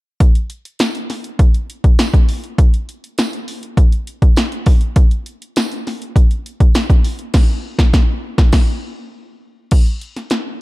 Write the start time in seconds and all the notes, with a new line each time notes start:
0.20 kick, closed hi-hat
0.35 closed hi-hat
0.50 closed hi-hat
0.65 closed hi-hat
0.79 snare, closed hi-hat, tambourine
0.95 closed hi-hat
1.10 snare, open hi-hat
1.24 closed hi-hat
1.39 kick, closed hi-hat
1.54 closed hi-hat
1.70 closed hi-hat
1.84 kick, closed hi-hat
1.99 snare, closed hi-hat, tambourine
2.14 kick, closed hi-hat
2.29 open hi-hat
2.44 closed hi-hat
2.58 kick, closed hi-hat
2.74 closed hi-hat
2.89 closed hi-hat
3.04 closed hi-hat
3.18 snare, closed hi-hat, tambourine
3.33 closed hi-hat
3.48 open hi-hat
3.63 closed hi-hat
3.77 kick, closed hi-hat
3.92 closed hi-hat
4.07 closed hi-hat
4.22 kick, closed hi-hat
4.36 snare, closed hi-hat, tambourine
4.52 closed hi-hat
4.66 kick, open hi-hat
4.81 closed hi-hat
4.96 kick, closed hi-hat
5.11 closed hi-hat
5.26 closed hi-hat
5.42 closed hi-hat
5.56 snare, closed hi-hat, tambourine
5.72 closed hi-hat
5.87 snare, open hi-hat
6.02 closed hi-hat
6.16 kick, closed hi-hat
6.31 closed hi-hat
6.46 closed hi-hat
6.60 kick, closed hi-hat
6.75 snare, closed hi-hat, tambourine
6.90 kick, closed hi-hat
7.04 open hi-hat
7.19 closed hi-hat
7.34 kick, snare, crash
7.79 kick, snare
7.93 kick, snare
8.38 kick, snare
8.52 kick, snare, crash
9.71 kick, closed hi-hat, crash
9.86 closed hi-hat
10.01 closed hi-hat
10.16 snare, closed hi-hat
10.30 snare, closed hi-hat